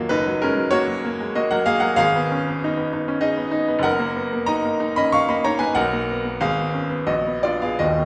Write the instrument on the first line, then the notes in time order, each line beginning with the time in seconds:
upright piano
Already playing: D#1 D#2 F#3 G#3 A#3 C#4 F4 F#4 A#4 C#5 D#5
0.09 F#1 D#4 B4
0.27 F#3
0.42 G#3 C#4 A#4
0.57 F#3
0.71 A#3 F#4 C#5
0.88 F#3
1.05 A#3
1.20 G#3
1.35 A#3 F#4 D#5
1.51 F#3 A#4 F#5
1.66 A#3 G#4 F5
1.80 F#3 A#4 F#5
1.96 G#1 G#4 F5
2.16 B3
2.32 C#4
2.48 B3
2.64 D#4
2.77 B3
2.93 D#4
3.08 C#4
3.21 D#4 G#4 D#5
3.37 B3
3.52 D#4
3.68 B3
3.79 F#1 F#5
3.84 A#4
4.00 A#3
4.16 B3
4.33 A#3
4.46 D#4 D#5 A#5
4.65 A#3
4.80 D#4
4.96 C#4 D#5 B5
5.12 D#4 F5 C#6
5.29 A#3 D#5 B5
5.44 D#4 C#5 A#5
5.59 A#3 B4 G#5
5.75 B1 A#4 F#5
5.93 A#3
6.11 B3
6.25 A#3
6.41 G#1 G#4 F5
6.58 B3
6.74 C#4
6.90 B3
7.07 A#1 F#4 D#5
7.27 B3
7.43 D4 F4 D5
7.62 B3 G#4 F5
7.79 D#1 D#2 F#4 D#5
7.99 A#3